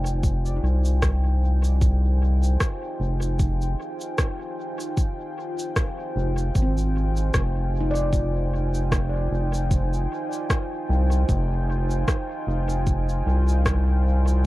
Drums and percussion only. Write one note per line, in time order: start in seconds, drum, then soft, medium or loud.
0.06 cabasa soft
0.23 kick loud
0.23 cabasa medium
0.46 cabasa soft
0.85 cabasa soft
1.02 kick loud
1.02 cross-stick medium
1.02 cabasa medium
1.64 cabasa soft
1.81 kick loud
1.81 cabasa medium
2.43 cabasa soft
2.60 kick loud
2.60 cross-stick medium
2.60 cabasa medium
3.22 cabasa soft
3.39 kick loud
3.39 cabasa medium
3.62 cabasa soft
4.01 cabasa soft
4.18 kick loud
4.18 cross-stick medium
4.18 cabasa medium
4.80 cabasa soft
4.97 kick loud
4.97 cabasa medium
5.59 cabasa soft
5.76 kick loud
5.76 cross-stick medium
5.76 cabasa medium
6.38 cabasa soft
6.55 kick loud
6.55 cabasa medium
6.77 cabasa soft
7.17 cabasa soft
7.34 kick loud
7.34 cross-stick medium
7.34 cabasa medium
7.96 cabasa soft
8.13 kick loud
8.13 cabasa medium
8.75 cabasa soft
8.92 kick loud
8.92 cross-stick medium
8.92 cabasa medium
9.54 cabasa soft
9.71 kick loud
9.71 cabasa soft
9.93 cabasa soft
10.33 cabasa soft
10.50 kick loud
10.50 cross-stick medium
10.50 cabasa soft
11.12 cabasa soft
11.29 kick loud
11.29 cabasa soft
11.91 cabasa soft
12.08 kick loud
12.08 cross-stick medium
12.08 cabasa soft
12.69 cabasa soft
12.87 kick loud
12.87 cabasa soft
13.09 cabasa soft
13.48 cabasa soft
13.66 kick loud
13.66 cross-stick medium
13.66 cabasa soft
14.28 cabasa soft